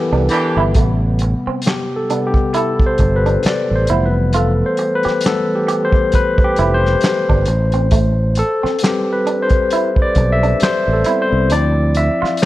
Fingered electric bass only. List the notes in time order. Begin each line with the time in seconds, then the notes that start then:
0.12 C2
0.57 G1
0.76 A1
1.47 muted fingered electric bass stroke
3.00 G1
3.45 muted fingered electric bass stroke
3.71 A1
3.90 F1
5.06 muted fingered electric bass stroke
6.59 F1
7.30 G1
7.48 A1
8.64 muted fingered electric bass stroke
10.16 B1
10.62 muted fingered electric bass stroke
10.88 A1
11.32 C2
11.51 D2
12.22 muted fingered electric bass stroke